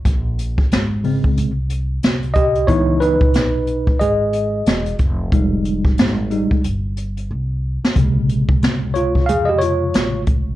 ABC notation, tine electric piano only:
X:1
M:4/4
L:1/16
Q:"Swing 16ths" 1/4=91
K:Bbdor
V:1 name="Tine electric piano"
z12 z2 [Ge]2 | [_Fd]2 [E_c]6 [Ae]6 z2 | z16 | z6 [Fd]2 [Af] [Ge] [Fd]4 z2 |]
V:2 name="Tine electric piano" clef=bass
z6 [D,A,C]2 z8 | [_F,_CE]2 z12 z2 | [G,A,E]6 [G,A,E]2 z8 | [C,D,A,]16 |]